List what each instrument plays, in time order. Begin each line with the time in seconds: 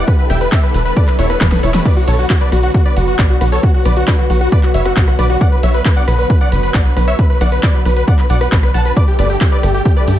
Already playing: analog synth pad D3 G3 B3 E4
0.07 analog synth pad A4, synth pluck B4, supersaw synth B4, kick, closed hi-hat, ride, shaker
0.19 synth pluck B4, supersaw synth B4, closed hi-hat
0.30 analog synth bass E1, supersaw synth E5 G5, synth pluck G5, cross-stick, open hi-hat, ride, shaker
0.41 synth pluck B4, supersaw synth B4, closed hi-hat, shaker
0.52 supersaw synth G4 E5, synth pluck E5, kick, clap, closed hi-hat, ride, shaker
0.63 synth pluck B4, supersaw synth B4, closed hi-hat
0.74 analog synth bass E1, synth pluck B4, supersaw synth B4, open hi-hat, ride, shaker
0.85 synth pluck B4, supersaw synth B4, closed hi-hat, shaker
0.96 supersaw synth B4 D5, synth pluck D5, kick, closed hi-hat, ride, shaker
1.08 synth pluck B4, supersaw synth B4, clap, closed hi-hat
1.19 analog synth bass E1, supersaw synth E4 C#5, synth pluck C#5, open hi-hat, ride, shaker
1.30 synth pluck B4, supersaw synth B4, cross-stick, closed hi-hat, shaker
1.41 analog synth bass E1, synth pluck B4, supersaw synth B4, kick, snare, clap, closed hi-hat, ride, shaker
1.52 synth pluck B4, supersaw synth B4, snare, closed hi-hat
1.63 analog synth bass E1, supersaw synth E4 C#5, synth pluck C#5, open hi-hat, ride, shaker
1.74 synth pluck B4, supersaw synth B4, snare, closed hi-hat, shaker
1.85 analog synth pad F#3 F#4 B4, supersaw synth B4 D5, synth pluck D5, kick, closed hi-hat, crash, ride, shaker
1.97 synth pluck F#4, supersaw synth F#4, closed hi-hat
2.08 analog synth bass B1, supersaw synth A4 C#5, synth pluck C#5, open hi-hat, ride, shaker
2.19 synth pluck F#4, supersaw synth F#4, closed hi-hat, shaker
2.30 synth pluck F#4, supersaw synth F#4, kick, clap, closed hi-hat, ride, shaker
2.41 supersaw synth B4 D5, synth pluck D5, closed hi-hat
2.52 analog synth bass B1, synth pluck F#4, supersaw synth F#4, cross-stick, open hi-hat, ride, shaker
2.63 synth pluck F#4, supersaw synth F#4, closed hi-hat, shaker
2.74 synth pluck F#4, supersaw synth F#4, kick, closed hi-hat, ride, shaker
2.85 supersaw synth B4 D5, synth pluck D5, closed hi-hat
2.96 analog synth bass F#1, supersaw synth F#4, synth pluck F#4, open hi-hat, ride, shaker
3.07 supersaw synth F#4, synth pluck F#4, closed hi-hat, shaker
3.18 analog synth bass B1, supersaw synth B4 D5, synth pluck D5, kick, clap, closed hi-hat, ride, shaker
3.30 supersaw synth F#4, synth pluck F#4, closed hi-hat
3.41 analog synth bass B1, synth pluck F#4, supersaw synth F#4, cross-stick, open hi-hat, ride, shaker
3.52 supersaw synth A4 C#5, synth pluck C#5, closed hi-hat, shaker
3.63 supersaw synth F#4, synth pluck F#4, kick, closed hi-hat, ride, shaker
3.74 supersaw synth F#4, synth pluck F#4, closed hi-hat
3.84 analog synth bass B1, supersaw synth B4 D5, synth pluck D5, cross-stick, open hi-hat, ride, shaker
3.96 synth pluck F#4, supersaw synth F#4, closed hi-hat, shaker
4.08 supersaw synth D4 B4, synth pluck B4, kick, clap, closed hi-hat, ride, shaker
4.19 synth pluck F#4, supersaw synth F#4, closed hi-hat
4.30 analog synth bass B1, synth pluck F#4, supersaw synth F#4, open hi-hat, ride, shaker
4.41 synth pluck F#4, supersaw synth F#4, closed hi-hat, shaker
4.52 supersaw synth B4 D5, synth pluck D5, kick, closed hi-hat, ride, shaker
4.63 synth pluck F#4, supersaw synth F#4, clap, closed hi-hat
4.74 analog synth bass F#1, supersaw synth C#5 E5, synth pluck E5, open hi-hat, ride, shaker
4.85 synth pluck F#4, supersaw synth F#4, cross-stick, closed hi-hat, shaker
4.96 analog synth bass B1, synth pluck F#4, supersaw synth F#4, kick, clap, closed hi-hat, ride, shaker
5.08 synth pluck F#4, supersaw synth F#4, cross-stick, closed hi-hat
5.19 analog synth bass B1, supersaw synth B4 D5, synth pluck D5, open hi-hat, ride, shaker
5.30 synth pluck F#4, supersaw synth F#4, closed hi-hat, shaker
5.41 supersaw synth D5 F#5, synth pluck F#5, kick, closed hi-hat, ride, shaker
5.52 synth pluck B4, supersaw synth B4, closed hi-hat
5.63 analog synth bass B1, supersaw synth C#5 E5, synth pluck E5, open hi-hat, ride, shaker
5.74 synth pluck B4, supersaw synth B4, closed hi-hat, shaker
5.85 synth pluck B4, supersaw synth B4, kick, clap, closed hi-hat, ride, shaker
5.96 supersaw synth D5 F#5, synth pluck F#5, closed hi-hat
6.08 analog synth bass B1, supersaw synth B4, synth pluck B4, cross-stick, open hi-hat, ride, shaker
6.19 synth pluck B4, supersaw synth B4, closed hi-hat, shaker
6.30 synth pluck B4, supersaw synth B4, kick, closed hi-hat, ride, shaker
6.41 supersaw synth D5 F#5, synth pluck F#5, closed hi-hat
6.52 analog synth bass F#1, synth pluck B4, supersaw synth B4, open hi-hat, ride, shaker
6.63 synth pluck B4, supersaw synth B4, closed hi-hat, shaker
6.74 analog synth bass B1, supersaw synth D5 F#5, synth pluck F#5, kick, clap, closed hi-hat, ride, shaker
6.85 supersaw synth B4, synth pluck B4, closed hi-hat
6.97 analog synth bass B1, synth pluck B4, supersaw synth B4, cross-stick, open hi-hat, ride, shaker
7.08 supersaw synth C#5 E5, synth pluck E5, closed hi-hat, shaker
7.19 supersaw synth B4, synth pluck B4, kick, closed hi-hat, ride, shaker
7.30 supersaw synth B4, synth pluck B4, closed hi-hat
7.41 analog synth bass B1, supersaw synth D5 F#5, synth pluck F#5, cross-stick, open hi-hat, ride, shaker
7.52 supersaw synth B4, synth pluck B4, closed hi-hat, shaker
7.62 supersaw synth B4 D5, synth pluck D5, kick, clap, closed hi-hat, ride, shaker
7.74 supersaw synth B4, synth pluck B4, closed hi-hat
7.85 analog synth bass B1, supersaw synth B4, synth pluck B4, open hi-hat, ride, shaker
7.96 supersaw synth B4, synth pluck B4, closed hi-hat, shaker
8.07 supersaw synth D5 F#5, synth pluck F#5, kick, closed hi-hat, ride, shaker
8.19 supersaw synth B4, synth pluck B4, clap, closed hi-hat
8.29 analog synth bass B1, supersaw synth D5 F#5, synth pluck F#5, open hi-hat, ride, shaker
8.41 supersaw synth B4, synth pluck B4, cross-stick, closed hi-hat, shaker
8.52 analog synth bass B1, supersaw synth B4, synth pluck B4, kick, clap, closed hi-hat, ride, shaker
8.63 supersaw synth B4, synth pluck B4, cross-stick, closed hi-hat
8.74 analog synth bass B1, supersaw synth F#5 A5, synth pluck A5, open hi-hat, ride, shaker
8.85 supersaw synth B4, synth pluck B4, closed hi-hat, shaker
8.96 analog synth pad D3 G3 A3 G4 A4, supersaw synth B4 D5, synth pluck D5, kick, closed hi-hat, ride, shaker
9.08 supersaw synth G4, synth pluck G4, closed hi-hat
9.19 analog synth bass G1, supersaw synth B4 D5, synth pluck D5, open hi-hat, ride, shaker
9.30 supersaw synth G4, synth pluck G4, closed hi-hat, shaker
9.41 synth pluck G4, supersaw synth G4, kick, clap, closed hi-hat, ride, shaker
9.52 supersaw synth B4 D5, synth pluck D5, closed hi-hat
9.63 analog synth bass G1, supersaw synth G4, synth pluck G4, cross-stick, open hi-hat, ride, shaker
9.74 synth pluck G4, supersaw synth G4, closed hi-hat, shaker
9.85 supersaw synth G4, synth pluck G4, kick, closed hi-hat, ride, shaker
9.97 supersaw synth B4 D5, synth pluck D5, closed hi-hat
10.07 analog synth bass G2, supersaw synth G4, synth pluck G4, open hi-hat, ride, shaker